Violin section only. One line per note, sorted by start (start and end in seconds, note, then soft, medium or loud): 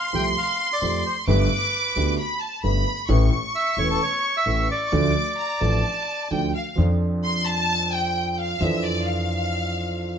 0.00 1.28 C6 medium
1.27 2.14 D6 medium
2.18 2.41 B5 medium
2.40 2.63 A5 medium
2.63 3.05 B5 medium
3.09 4.84 C#6 medium
4.85 4.92 C#6 medium
4.92 5.38 D6 medium
5.38 5.59 A#5 medium
5.61 6.31 A5 medium
6.31 6.54 G5 medium
6.55 6.76 F5 medium
7.24 7.45 C6 medium
7.47 7.93 A5 loud
7.93 8.31 G5 medium
8.32 8.38 G5 medium
8.38 8.61 F5 medium
8.61 8.84 E5 medium
8.84 9.06 D5 medium
9.06 10.19 F5 medium